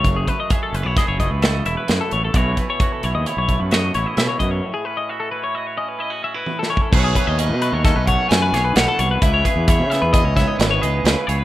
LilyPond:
<<
  \new Staff \with { instrumentName = "Overdriven electric guitar" } { \time 5/4 \key b \mixolydian \tempo 4 = 131 r1 r4 | r1 r4 | r1 r4 | cis''4 dis''4 dis''8 fis''8 gis''4 fis''4 |
e''4 e''4 dis''8 cis''8 b'4. r8 | }
  \new Staff \with { instrumentName = "Clean electric guitar" } { \time 5/4 \key b \mixolydian cis''16 gis'16 b'16 dis''16 e''16 a'16 b'16 cis''16 dis''16 cis''16 dis''16 b'16 dis''8 e''16 b'8 a'16 cis''16 a'16 | cis''8 b'16 cis''8 a'16 cis''16 dis''16 cis''16 cis''8 b'16 dis''8 cis''16 dis''16 e''16 cis''16 dis''16 cis''16~ | cis''16 gis'16 b'16 dis''16 e''16 a'16 b'16 cis''16 dis''16 cis''16 dis''16 b'16 dis''8 e''16 b'8 a'16 cis''16 a'16 | b'16 gis'16 b'16 dis''16 b'8 b'16 cis''16 a'16 b'16 cis''8 b'16 b'16 cis''16 b'16 cis''16 a'16 cis''16 b'16~ |
b'16 cis''16 b'8 cis''8 e''16 b'16 dis''16 cis''16 e''16 dis''16 b'16 cis''16 dis''8 b'8 cis''16 b'16 | }
  \new Staff \with { instrumentName = "Clean electric guitar" } { \time 5/4 \key b \mixolydian << { a8 a8 gis'8 cis'16 e'16 gis'8 a8 a'8 e'4 a8 | <e a e' fis'>8 a8 fis'8 e'8 e'8 a8 fis'8 e'4. | r8 cis'8 fis'8 e'8 fis'8 cis'8 e'16 fis'16 cis'16 e'8. cis'8 | <fis a cis' gis'>8 gis'8 cis'8 a8 cis'8 a8 cis'8 gis'4. |
e'8 gis'8 e'8 b8 e'8 b8 e'8 gis'8 e'8 gis'8 | } \\ { fis,1 fis,4 | b,1 cis8 b,8 | a,1 a,4 | b,4. fis4 fis,4. a,8 b,8 |
cis4. e4 gis,4. cis4 | } >> }
  \new Staff \with { instrumentName = "Fingered electric bass" } { \clef bass \time 5/4 \key b \mixolydian fis,,8 r4 fis,,16 b,,16 r16 fis,,8 cis,8. e,,16 r16 fis,16 r16 a,,8 | b,,8 r4 b,,16 dis,16 r16 b,,8 fis,8. a,,16 r16 b,16 r16 fis,8 | r1 r4 | b,,8 r16 dis,8 b,8 dis,8 b,,8 r16 fis,8 b,,8 b,,16 r16 c,8 |
cis,8 r16 e,8 cis8 e,8 cis,8 r16 gis,,8 cis,8 cis,16 r16 cis,8 | }
  \new DrumStaff \with { instrumentName = "Drums" } \drummode { \time 5/4 <hh bd>8 <hh bd>8 <hh bd>8 hh8 <hh bd sn>8 <hh bd>8 <hh sn>8 hh8 <hh sn>8 hh8 | <hh bd>8 <hh bd>8 <hh bd>8 hh8 hh8 <hh bd>8 <hh sn>8 hh8 <hh sn>8 <hh bd>8 | r4 r4 r4 r4 \tuplet 3/2 { tommh8 sn8 bd8 } | <cymc bd>8 <hh bd>8 hh8 hh8 <hh bd sn>8 <hh bd>8 <hh sn>8 <hh sn>8 <hh sn>8 hh8 |
<hh bd>8 <hh bd>8 <hh bd>8 <hh sn>8 <hh bd>8 <hh bd sn>8 <hh sn>8 hh8 <hh sn>8 hh8 | }
>>